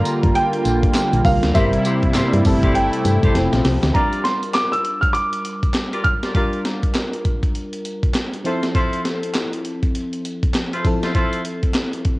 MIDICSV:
0, 0, Header, 1, 7, 480
1, 0, Start_track
1, 0, Tempo, 600000
1, 1241, Time_signature, 4, 2, 24, 8
1, 9754, End_track
2, 0, Start_track
2, 0, Title_t, "Grand piano"
2, 0, Program_c, 0, 0
2, 0, Note_on_c, 0, 82, 101
2, 281, Note_on_c, 0, 79, 105
2, 294, Note_off_c, 0, 82, 0
2, 998, Note_on_c, 0, 77, 91
2, 1023, Note_off_c, 0, 79, 0
2, 1236, Note_on_c, 0, 76, 98
2, 1247, Note_off_c, 0, 77, 0
2, 2196, Note_on_c, 0, 79, 89
2, 2227, Note_off_c, 0, 76, 0
2, 2886, Note_off_c, 0, 79, 0
2, 3153, Note_on_c, 0, 82, 79
2, 3392, Note_on_c, 0, 84, 84
2, 3404, Note_off_c, 0, 82, 0
2, 3632, Note_on_c, 0, 86, 80
2, 3644, Note_off_c, 0, 84, 0
2, 3777, Note_on_c, 0, 88, 87
2, 3785, Note_off_c, 0, 86, 0
2, 4004, Note_off_c, 0, 88, 0
2, 4011, Note_on_c, 0, 89, 87
2, 4107, Note_on_c, 0, 86, 98
2, 4117, Note_off_c, 0, 89, 0
2, 4832, Note_on_c, 0, 89, 96
2, 4856, Note_off_c, 0, 86, 0
2, 5524, Note_off_c, 0, 89, 0
2, 9754, End_track
3, 0, Start_track
3, 0, Title_t, "Horn section"
3, 0, Program_c, 1, 61
3, 1240, Note_on_c, 1, 64, 105
3, 1241, Note_on_c, 1, 67, 97
3, 1244, Note_on_c, 1, 70, 90
3, 1246, Note_on_c, 1, 72, 102
3, 1392, Note_off_c, 1, 64, 0
3, 1393, Note_off_c, 1, 67, 0
3, 1394, Note_off_c, 1, 70, 0
3, 1395, Note_off_c, 1, 72, 0
3, 1479, Note_on_c, 1, 64, 85
3, 1480, Note_on_c, 1, 67, 81
3, 1483, Note_on_c, 1, 70, 72
3, 1483, Note_on_c, 1, 72, 94
3, 1632, Note_off_c, 1, 64, 0
3, 1632, Note_off_c, 1, 67, 0
3, 1633, Note_off_c, 1, 70, 0
3, 1634, Note_off_c, 1, 72, 0
3, 1720, Note_on_c, 1, 64, 69
3, 1722, Note_on_c, 1, 67, 69
3, 1723, Note_on_c, 1, 70, 65
3, 1725, Note_on_c, 1, 72, 88
3, 1872, Note_off_c, 1, 64, 0
3, 1873, Note_off_c, 1, 67, 0
3, 1873, Note_off_c, 1, 70, 0
3, 1875, Note_off_c, 1, 72, 0
3, 2105, Note_on_c, 1, 64, 82
3, 2106, Note_on_c, 1, 67, 75
3, 2108, Note_on_c, 1, 69, 75
3, 2108, Note_on_c, 1, 72, 86
3, 2212, Note_off_c, 1, 64, 0
3, 2212, Note_off_c, 1, 67, 0
3, 2214, Note_off_c, 1, 69, 0
3, 2214, Note_off_c, 1, 72, 0
3, 2583, Note_on_c, 1, 64, 77
3, 2586, Note_on_c, 1, 67, 73
3, 2587, Note_on_c, 1, 69, 74
3, 2589, Note_on_c, 1, 72, 86
3, 2691, Note_off_c, 1, 64, 0
3, 2692, Note_off_c, 1, 67, 0
3, 2693, Note_off_c, 1, 69, 0
3, 2694, Note_off_c, 1, 72, 0
3, 3157, Note_on_c, 1, 65, 89
3, 3157, Note_on_c, 1, 67, 84
3, 3159, Note_on_c, 1, 70, 80
3, 3161, Note_on_c, 1, 74, 101
3, 3383, Note_off_c, 1, 65, 0
3, 3384, Note_off_c, 1, 67, 0
3, 3385, Note_off_c, 1, 70, 0
3, 3385, Note_off_c, 1, 74, 0
3, 4743, Note_on_c, 1, 65, 68
3, 4744, Note_on_c, 1, 67, 61
3, 4746, Note_on_c, 1, 70, 68
3, 4747, Note_on_c, 1, 74, 78
3, 4851, Note_off_c, 1, 65, 0
3, 4852, Note_off_c, 1, 67, 0
3, 4852, Note_off_c, 1, 70, 0
3, 4853, Note_off_c, 1, 74, 0
3, 4983, Note_on_c, 1, 65, 72
3, 4984, Note_on_c, 1, 67, 64
3, 4987, Note_on_c, 1, 70, 67
3, 4988, Note_on_c, 1, 74, 71
3, 5068, Note_off_c, 1, 65, 0
3, 5070, Note_off_c, 1, 67, 0
3, 5071, Note_off_c, 1, 70, 0
3, 5072, Note_off_c, 1, 74, 0
3, 5077, Note_on_c, 1, 65, 86
3, 5079, Note_on_c, 1, 67, 79
3, 5080, Note_on_c, 1, 70, 77
3, 5081, Note_on_c, 1, 74, 95
3, 5304, Note_off_c, 1, 65, 0
3, 5305, Note_off_c, 1, 67, 0
3, 5305, Note_off_c, 1, 70, 0
3, 5306, Note_off_c, 1, 74, 0
3, 6758, Note_on_c, 1, 64, 71
3, 6760, Note_on_c, 1, 65, 67
3, 6761, Note_on_c, 1, 69, 69
3, 6763, Note_on_c, 1, 72, 83
3, 6911, Note_off_c, 1, 64, 0
3, 6912, Note_off_c, 1, 65, 0
3, 6913, Note_off_c, 1, 69, 0
3, 6914, Note_off_c, 1, 72, 0
3, 6997, Note_on_c, 1, 64, 94
3, 6998, Note_on_c, 1, 65, 78
3, 7001, Note_on_c, 1, 69, 83
3, 7002, Note_on_c, 1, 72, 104
3, 7224, Note_off_c, 1, 64, 0
3, 7224, Note_off_c, 1, 65, 0
3, 7225, Note_off_c, 1, 69, 0
3, 7226, Note_off_c, 1, 72, 0
3, 8582, Note_on_c, 1, 64, 73
3, 8584, Note_on_c, 1, 65, 65
3, 8585, Note_on_c, 1, 69, 60
3, 8588, Note_on_c, 1, 72, 76
3, 8691, Note_off_c, 1, 64, 0
3, 8691, Note_off_c, 1, 65, 0
3, 8692, Note_off_c, 1, 69, 0
3, 8694, Note_off_c, 1, 72, 0
3, 8823, Note_on_c, 1, 64, 70
3, 8825, Note_on_c, 1, 65, 66
3, 8826, Note_on_c, 1, 69, 66
3, 8828, Note_on_c, 1, 72, 82
3, 8908, Note_off_c, 1, 64, 0
3, 8911, Note_off_c, 1, 65, 0
3, 8912, Note_off_c, 1, 69, 0
3, 8913, Note_off_c, 1, 72, 0
3, 8918, Note_on_c, 1, 64, 93
3, 8920, Note_on_c, 1, 65, 84
3, 8921, Note_on_c, 1, 69, 85
3, 8923, Note_on_c, 1, 72, 100
3, 9144, Note_off_c, 1, 64, 0
3, 9145, Note_off_c, 1, 65, 0
3, 9146, Note_off_c, 1, 69, 0
3, 9146, Note_off_c, 1, 72, 0
3, 9754, End_track
4, 0, Start_track
4, 0, Title_t, "FM electric piano"
4, 0, Program_c, 2, 5
4, 0, Control_c, 2, 64, 127
4, 0, Note_on_c, 2, 55, 65
4, 0, Note_on_c, 2, 62, 63
4, 0, Note_on_c, 2, 65, 62
4, 0, Note_on_c, 2, 70, 79
4, 968, Note_off_c, 2, 55, 0
4, 971, Note_off_c, 2, 62, 0
4, 973, Note_off_c, 2, 65, 0
4, 976, Note_off_c, 2, 70, 0
4, 1001, Note_on_c, 2, 55, 47
4, 1004, Note_on_c, 2, 62, 41
4, 1008, Note_on_c, 2, 65, 46
4, 1011, Note_on_c, 2, 70, 55
4, 1230, Note_off_c, 2, 55, 0
4, 1238, Note_off_c, 2, 70, 0
4, 1239, Note_on_c, 2, 55, 72
4, 1241, Note_on_c, 2, 60, 68
4, 1242, Note_off_c, 2, 62, 0
4, 1244, Note_on_c, 2, 64, 62
4, 1245, Note_off_c, 2, 65, 0
4, 1247, Note_on_c, 2, 70, 72
4, 1251, Control_c, 2, 64, 0
4, 1368, Control_c, 2, 64, 127
4, 1953, Note_off_c, 2, 55, 0
4, 1957, Note_off_c, 2, 60, 0
4, 1960, Note_off_c, 2, 64, 0
4, 1963, Note_on_c, 2, 55, 84
4, 1964, Note_off_c, 2, 70, 0
4, 1967, Note_on_c, 2, 60, 79
4, 1970, Note_on_c, 2, 64, 74
4, 1971, Control_c, 2, 64, 0
4, 1972, Note_on_c, 2, 69, 88
4, 2112, Control_c, 2, 64, 127
4, 2677, Note_off_c, 2, 60, 0
4, 2680, Note_off_c, 2, 64, 0
4, 2682, Note_off_c, 2, 55, 0
4, 2684, Note_off_c, 2, 69, 0
4, 2684, Note_on_c, 2, 53, 72
4, 2687, Note_on_c, 2, 60, 67
4, 2689, Note_on_c, 2, 64, 61
4, 2692, Control_c, 2, 64, 0
4, 2693, Note_on_c, 2, 69, 74
4, 2813, Control_c, 2, 64, 127
4, 3157, Note_on_c, 2, 55, 68
4, 3162, Note_on_c, 2, 62, 55
4, 3163, Note_off_c, 2, 53, 0
4, 3164, Note_off_c, 2, 60, 0
4, 3165, Note_off_c, 2, 64, 0
4, 3167, Note_off_c, 2, 69, 0
4, 3168, Note_on_c, 2, 65, 60
4, 3172, Control_c, 2, 64, 0
4, 3174, Note_on_c, 2, 70, 72
4, 3331, Control_c, 2, 64, 127
4, 5047, Note_off_c, 2, 55, 0
4, 5050, Note_off_c, 2, 62, 0
4, 5053, Note_off_c, 2, 65, 0
4, 5055, Note_off_c, 2, 70, 0
4, 5076, Note_on_c, 2, 55, 64
4, 5082, Note_on_c, 2, 62, 59
4, 5089, Note_on_c, 2, 65, 61
4, 5095, Note_on_c, 2, 70, 75
4, 6727, Note_off_c, 2, 55, 0
4, 6729, Note_off_c, 2, 62, 0
4, 6733, Note_off_c, 2, 65, 0
4, 6736, Note_off_c, 2, 70, 0
4, 6754, Note_on_c, 2, 53, 68
4, 6761, Note_on_c, 2, 60, 62
4, 6766, Note_on_c, 2, 64, 64
4, 6771, Control_c, 2, 64, 0
4, 6773, Note_on_c, 2, 69, 75
4, 6933, Control_c, 2, 64, 127
4, 8646, Note_off_c, 2, 53, 0
4, 8649, Note_off_c, 2, 60, 0
4, 8652, Note_off_c, 2, 64, 0
4, 8655, Note_off_c, 2, 69, 0
4, 8676, Note_on_c, 2, 53, 68
4, 8683, Note_on_c, 2, 60, 59
4, 8687, Note_on_c, 2, 64, 60
4, 8694, Note_on_c, 2, 69, 76
4, 9754, Note_off_c, 2, 53, 0
4, 9754, Note_off_c, 2, 60, 0
4, 9754, Note_off_c, 2, 64, 0
4, 9754, Note_off_c, 2, 69, 0
4, 9754, End_track
5, 0, Start_track
5, 0, Title_t, "Analog synth pad"
5, 0, Program_c, 3, 89
5, 0, Note_on_c, 3, 50, 81
5, 0, Note_on_c, 3, 55, 84
5, 0, Note_on_c, 3, 58, 73
5, 0, Note_on_c, 3, 65, 83
5, 1209, Note_off_c, 3, 55, 0
5, 1221, Note_off_c, 3, 50, 0
5, 1221, Note_off_c, 3, 65, 0
5, 1242, Note_on_c, 3, 48, 74
5, 1242, Note_on_c, 3, 55, 74
5, 1242, Note_on_c, 3, 64, 80
5, 1935, Note_off_c, 3, 58, 0
5, 1948, Note_off_c, 3, 64, 0
5, 1949, Note_off_c, 3, 48, 0
5, 1958, Note_on_c, 3, 64, 93
5, 1959, Note_on_c, 3, 48, 83
5, 1959, Note_on_c, 3, 57, 76
5, 2667, Note_off_c, 3, 55, 0
5, 2679, Note_on_c, 3, 53, 65
5, 3147, Note_off_c, 3, 64, 0
5, 3148, Note_off_c, 3, 48, 0
5, 3148, Note_off_c, 3, 57, 0
5, 3155, Note_off_c, 3, 53, 0
5, 9754, End_track
6, 0, Start_track
6, 0, Title_t, "FM bass"
6, 0, Program_c, 4, 39
6, 186, Note_on_c, 4, 31, 109
6, 257, Note_off_c, 4, 31, 0
6, 522, Note_on_c, 4, 34, 78
6, 700, Note_off_c, 4, 34, 0
6, 904, Note_on_c, 4, 34, 102
6, 976, Note_off_c, 4, 34, 0
6, 997, Note_on_c, 4, 36, 92
6, 1105, Note_off_c, 4, 36, 0
6, 1143, Note_on_c, 4, 38, 98
6, 1215, Note_off_c, 4, 38, 0
6, 1242, Note_on_c, 4, 31, 107
6, 1419, Note_off_c, 4, 31, 0
6, 1627, Note_on_c, 4, 43, 50
6, 1665, Note_off_c, 4, 43, 0
6, 1721, Note_on_c, 4, 43, 53
6, 1779, Note_off_c, 4, 43, 0
6, 1865, Note_on_c, 4, 43, 98
6, 1936, Note_off_c, 4, 43, 0
6, 1962, Note_on_c, 4, 31, 98
6, 2318, Note_off_c, 4, 31, 0
6, 2441, Note_on_c, 4, 43, 90
6, 2548, Note_off_c, 4, 43, 0
6, 2586, Note_on_c, 4, 31, 94
6, 2656, Note_off_c, 4, 31, 0
6, 2680, Note_on_c, 4, 29, 93
6, 2787, Note_off_c, 4, 29, 0
6, 2826, Note_on_c, 4, 34, 85
6, 2897, Note_off_c, 4, 34, 0
6, 2922, Note_on_c, 4, 36, 96
6, 3028, Note_off_c, 4, 36, 0
6, 3066, Note_on_c, 4, 38, 93
6, 3136, Note_off_c, 4, 38, 0
6, 9754, End_track
7, 0, Start_track
7, 0, Title_t, "Drums"
7, 41, Note_on_c, 9, 42, 72
7, 41, Note_on_c, 9, 54, 63
7, 121, Note_off_c, 9, 42, 0
7, 121, Note_off_c, 9, 54, 0
7, 185, Note_on_c, 9, 36, 93
7, 186, Note_on_c, 9, 42, 53
7, 265, Note_off_c, 9, 36, 0
7, 266, Note_off_c, 9, 42, 0
7, 280, Note_on_c, 9, 42, 78
7, 360, Note_off_c, 9, 42, 0
7, 424, Note_on_c, 9, 42, 56
7, 504, Note_off_c, 9, 42, 0
7, 519, Note_on_c, 9, 54, 60
7, 520, Note_on_c, 9, 42, 92
7, 599, Note_off_c, 9, 54, 0
7, 600, Note_off_c, 9, 42, 0
7, 665, Note_on_c, 9, 36, 98
7, 665, Note_on_c, 9, 42, 52
7, 745, Note_off_c, 9, 36, 0
7, 745, Note_off_c, 9, 42, 0
7, 755, Note_on_c, 9, 39, 94
7, 759, Note_on_c, 9, 38, 122
7, 759, Note_on_c, 9, 54, 100
7, 760, Note_on_c, 9, 42, 76
7, 835, Note_off_c, 9, 39, 0
7, 839, Note_off_c, 9, 38, 0
7, 839, Note_off_c, 9, 54, 0
7, 840, Note_off_c, 9, 42, 0
7, 906, Note_on_c, 9, 42, 47
7, 986, Note_off_c, 9, 42, 0
7, 998, Note_on_c, 9, 36, 107
7, 998, Note_on_c, 9, 46, 65
7, 1001, Note_on_c, 9, 54, 70
7, 1078, Note_off_c, 9, 36, 0
7, 1078, Note_off_c, 9, 46, 0
7, 1081, Note_off_c, 9, 54, 0
7, 1143, Note_on_c, 9, 42, 51
7, 1144, Note_on_c, 9, 38, 73
7, 1223, Note_off_c, 9, 42, 0
7, 1224, Note_off_c, 9, 38, 0
7, 1239, Note_on_c, 9, 42, 70
7, 1239, Note_on_c, 9, 54, 70
7, 1240, Note_on_c, 9, 36, 113
7, 1319, Note_off_c, 9, 42, 0
7, 1319, Note_off_c, 9, 54, 0
7, 1320, Note_off_c, 9, 36, 0
7, 1384, Note_on_c, 9, 42, 49
7, 1464, Note_off_c, 9, 42, 0
7, 1479, Note_on_c, 9, 42, 82
7, 1481, Note_on_c, 9, 54, 66
7, 1559, Note_off_c, 9, 42, 0
7, 1561, Note_off_c, 9, 54, 0
7, 1622, Note_on_c, 9, 42, 56
7, 1625, Note_on_c, 9, 36, 90
7, 1702, Note_off_c, 9, 42, 0
7, 1705, Note_off_c, 9, 36, 0
7, 1716, Note_on_c, 9, 39, 89
7, 1719, Note_on_c, 9, 42, 70
7, 1720, Note_on_c, 9, 38, 115
7, 1720, Note_on_c, 9, 54, 93
7, 1796, Note_off_c, 9, 39, 0
7, 1799, Note_off_c, 9, 42, 0
7, 1800, Note_off_c, 9, 38, 0
7, 1800, Note_off_c, 9, 54, 0
7, 1868, Note_on_c, 9, 42, 53
7, 1948, Note_off_c, 9, 42, 0
7, 1959, Note_on_c, 9, 54, 62
7, 1960, Note_on_c, 9, 46, 66
7, 1962, Note_on_c, 9, 36, 88
7, 2039, Note_off_c, 9, 54, 0
7, 2040, Note_off_c, 9, 46, 0
7, 2042, Note_off_c, 9, 36, 0
7, 2105, Note_on_c, 9, 36, 97
7, 2105, Note_on_c, 9, 42, 48
7, 2185, Note_off_c, 9, 36, 0
7, 2185, Note_off_c, 9, 42, 0
7, 2202, Note_on_c, 9, 42, 77
7, 2282, Note_off_c, 9, 42, 0
7, 2345, Note_on_c, 9, 42, 60
7, 2425, Note_off_c, 9, 42, 0
7, 2439, Note_on_c, 9, 54, 64
7, 2440, Note_on_c, 9, 42, 90
7, 2519, Note_off_c, 9, 54, 0
7, 2520, Note_off_c, 9, 42, 0
7, 2585, Note_on_c, 9, 36, 96
7, 2586, Note_on_c, 9, 42, 48
7, 2665, Note_off_c, 9, 36, 0
7, 2666, Note_off_c, 9, 42, 0
7, 2681, Note_on_c, 9, 38, 60
7, 2682, Note_on_c, 9, 42, 83
7, 2761, Note_off_c, 9, 38, 0
7, 2762, Note_off_c, 9, 42, 0
7, 2823, Note_on_c, 9, 38, 67
7, 2825, Note_on_c, 9, 42, 46
7, 2903, Note_off_c, 9, 38, 0
7, 2905, Note_off_c, 9, 42, 0
7, 2919, Note_on_c, 9, 46, 68
7, 2920, Note_on_c, 9, 38, 97
7, 2999, Note_off_c, 9, 46, 0
7, 3000, Note_off_c, 9, 38, 0
7, 3065, Note_on_c, 9, 38, 99
7, 3065, Note_on_c, 9, 42, 54
7, 3145, Note_off_c, 9, 38, 0
7, 3145, Note_off_c, 9, 42, 0
7, 3160, Note_on_c, 9, 36, 101
7, 3160, Note_on_c, 9, 42, 63
7, 3240, Note_off_c, 9, 36, 0
7, 3240, Note_off_c, 9, 42, 0
7, 3303, Note_on_c, 9, 42, 44
7, 3383, Note_off_c, 9, 42, 0
7, 3400, Note_on_c, 9, 42, 76
7, 3401, Note_on_c, 9, 38, 67
7, 3480, Note_off_c, 9, 42, 0
7, 3481, Note_off_c, 9, 38, 0
7, 3544, Note_on_c, 9, 42, 50
7, 3624, Note_off_c, 9, 42, 0
7, 3637, Note_on_c, 9, 39, 83
7, 3640, Note_on_c, 9, 38, 100
7, 3640, Note_on_c, 9, 42, 64
7, 3717, Note_off_c, 9, 39, 0
7, 3720, Note_off_c, 9, 38, 0
7, 3720, Note_off_c, 9, 42, 0
7, 3788, Note_on_c, 9, 42, 48
7, 3868, Note_off_c, 9, 42, 0
7, 3879, Note_on_c, 9, 42, 59
7, 3959, Note_off_c, 9, 42, 0
7, 4024, Note_on_c, 9, 36, 85
7, 4025, Note_on_c, 9, 42, 47
7, 4104, Note_off_c, 9, 36, 0
7, 4105, Note_off_c, 9, 42, 0
7, 4120, Note_on_c, 9, 42, 74
7, 4200, Note_off_c, 9, 42, 0
7, 4264, Note_on_c, 9, 42, 52
7, 4344, Note_off_c, 9, 42, 0
7, 4360, Note_on_c, 9, 42, 80
7, 4440, Note_off_c, 9, 42, 0
7, 4505, Note_on_c, 9, 36, 91
7, 4507, Note_on_c, 9, 42, 44
7, 4585, Note_off_c, 9, 36, 0
7, 4587, Note_off_c, 9, 42, 0
7, 4594, Note_on_c, 9, 39, 86
7, 4598, Note_on_c, 9, 38, 115
7, 4600, Note_on_c, 9, 42, 71
7, 4674, Note_off_c, 9, 39, 0
7, 4678, Note_off_c, 9, 38, 0
7, 4680, Note_off_c, 9, 42, 0
7, 4745, Note_on_c, 9, 42, 43
7, 4825, Note_off_c, 9, 42, 0
7, 4837, Note_on_c, 9, 36, 97
7, 4837, Note_on_c, 9, 42, 63
7, 4917, Note_off_c, 9, 36, 0
7, 4917, Note_off_c, 9, 42, 0
7, 4985, Note_on_c, 9, 42, 49
7, 4986, Note_on_c, 9, 38, 63
7, 5065, Note_off_c, 9, 42, 0
7, 5066, Note_off_c, 9, 38, 0
7, 5079, Note_on_c, 9, 36, 100
7, 5079, Note_on_c, 9, 42, 63
7, 5159, Note_off_c, 9, 36, 0
7, 5159, Note_off_c, 9, 42, 0
7, 5224, Note_on_c, 9, 42, 42
7, 5304, Note_off_c, 9, 42, 0
7, 5319, Note_on_c, 9, 42, 73
7, 5320, Note_on_c, 9, 38, 65
7, 5399, Note_off_c, 9, 42, 0
7, 5400, Note_off_c, 9, 38, 0
7, 5465, Note_on_c, 9, 36, 78
7, 5465, Note_on_c, 9, 42, 55
7, 5545, Note_off_c, 9, 36, 0
7, 5545, Note_off_c, 9, 42, 0
7, 5557, Note_on_c, 9, 39, 82
7, 5560, Note_on_c, 9, 42, 69
7, 5561, Note_on_c, 9, 38, 111
7, 5637, Note_off_c, 9, 39, 0
7, 5640, Note_off_c, 9, 42, 0
7, 5641, Note_off_c, 9, 38, 0
7, 5707, Note_on_c, 9, 42, 46
7, 5787, Note_off_c, 9, 42, 0
7, 5800, Note_on_c, 9, 42, 61
7, 5801, Note_on_c, 9, 36, 88
7, 5880, Note_off_c, 9, 42, 0
7, 5881, Note_off_c, 9, 36, 0
7, 5944, Note_on_c, 9, 36, 81
7, 5946, Note_on_c, 9, 42, 50
7, 6024, Note_off_c, 9, 36, 0
7, 6026, Note_off_c, 9, 42, 0
7, 6041, Note_on_c, 9, 42, 71
7, 6121, Note_off_c, 9, 42, 0
7, 6184, Note_on_c, 9, 42, 50
7, 6264, Note_off_c, 9, 42, 0
7, 6280, Note_on_c, 9, 42, 78
7, 6360, Note_off_c, 9, 42, 0
7, 6424, Note_on_c, 9, 36, 97
7, 6425, Note_on_c, 9, 42, 44
7, 6504, Note_off_c, 9, 36, 0
7, 6505, Note_off_c, 9, 42, 0
7, 6516, Note_on_c, 9, 39, 90
7, 6519, Note_on_c, 9, 38, 116
7, 6521, Note_on_c, 9, 42, 71
7, 6596, Note_off_c, 9, 39, 0
7, 6599, Note_off_c, 9, 38, 0
7, 6601, Note_off_c, 9, 42, 0
7, 6667, Note_on_c, 9, 42, 43
7, 6747, Note_off_c, 9, 42, 0
7, 6760, Note_on_c, 9, 42, 59
7, 6840, Note_off_c, 9, 42, 0
7, 6904, Note_on_c, 9, 38, 63
7, 6904, Note_on_c, 9, 42, 48
7, 6984, Note_off_c, 9, 38, 0
7, 6984, Note_off_c, 9, 42, 0
7, 6999, Note_on_c, 9, 36, 107
7, 6999, Note_on_c, 9, 42, 61
7, 7079, Note_off_c, 9, 36, 0
7, 7079, Note_off_c, 9, 42, 0
7, 7144, Note_on_c, 9, 42, 45
7, 7224, Note_off_c, 9, 42, 0
7, 7240, Note_on_c, 9, 38, 64
7, 7240, Note_on_c, 9, 42, 77
7, 7320, Note_off_c, 9, 38, 0
7, 7320, Note_off_c, 9, 42, 0
7, 7385, Note_on_c, 9, 42, 52
7, 7465, Note_off_c, 9, 42, 0
7, 7476, Note_on_c, 9, 39, 88
7, 7479, Note_on_c, 9, 42, 66
7, 7480, Note_on_c, 9, 38, 101
7, 7556, Note_off_c, 9, 39, 0
7, 7559, Note_off_c, 9, 42, 0
7, 7560, Note_off_c, 9, 38, 0
7, 7625, Note_on_c, 9, 42, 48
7, 7705, Note_off_c, 9, 42, 0
7, 7718, Note_on_c, 9, 42, 60
7, 7798, Note_off_c, 9, 42, 0
7, 7862, Note_on_c, 9, 42, 45
7, 7863, Note_on_c, 9, 36, 81
7, 7942, Note_off_c, 9, 42, 0
7, 7943, Note_off_c, 9, 36, 0
7, 7961, Note_on_c, 9, 42, 78
7, 8041, Note_off_c, 9, 42, 0
7, 8104, Note_on_c, 9, 42, 52
7, 8184, Note_off_c, 9, 42, 0
7, 8201, Note_on_c, 9, 42, 83
7, 8281, Note_off_c, 9, 42, 0
7, 8344, Note_on_c, 9, 36, 95
7, 8345, Note_on_c, 9, 42, 46
7, 8424, Note_off_c, 9, 36, 0
7, 8425, Note_off_c, 9, 42, 0
7, 8436, Note_on_c, 9, 39, 83
7, 8439, Note_on_c, 9, 38, 107
7, 8441, Note_on_c, 9, 42, 69
7, 8516, Note_off_c, 9, 39, 0
7, 8519, Note_off_c, 9, 38, 0
7, 8521, Note_off_c, 9, 42, 0
7, 8586, Note_on_c, 9, 42, 44
7, 8666, Note_off_c, 9, 42, 0
7, 8677, Note_on_c, 9, 36, 102
7, 8678, Note_on_c, 9, 42, 64
7, 8757, Note_off_c, 9, 36, 0
7, 8758, Note_off_c, 9, 42, 0
7, 8824, Note_on_c, 9, 38, 68
7, 8824, Note_on_c, 9, 42, 49
7, 8904, Note_off_c, 9, 38, 0
7, 8904, Note_off_c, 9, 42, 0
7, 8918, Note_on_c, 9, 42, 58
7, 8919, Note_on_c, 9, 36, 98
7, 8998, Note_off_c, 9, 42, 0
7, 8999, Note_off_c, 9, 36, 0
7, 9062, Note_on_c, 9, 42, 47
7, 9142, Note_off_c, 9, 42, 0
7, 9159, Note_on_c, 9, 42, 77
7, 9239, Note_off_c, 9, 42, 0
7, 9303, Note_on_c, 9, 42, 48
7, 9304, Note_on_c, 9, 36, 80
7, 9383, Note_off_c, 9, 42, 0
7, 9384, Note_off_c, 9, 36, 0
7, 9395, Note_on_c, 9, 39, 81
7, 9398, Note_on_c, 9, 38, 105
7, 9398, Note_on_c, 9, 42, 65
7, 9475, Note_off_c, 9, 39, 0
7, 9478, Note_off_c, 9, 38, 0
7, 9478, Note_off_c, 9, 42, 0
7, 9546, Note_on_c, 9, 42, 47
7, 9626, Note_off_c, 9, 42, 0
7, 9638, Note_on_c, 9, 42, 62
7, 9641, Note_on_c, 9, 36, 89
7, 9718, Note_off_c, 9, 42, 0
7, 9721, Note_off_c, 9, 36, 0
7, 9754, End_track
0, 0, End_of_file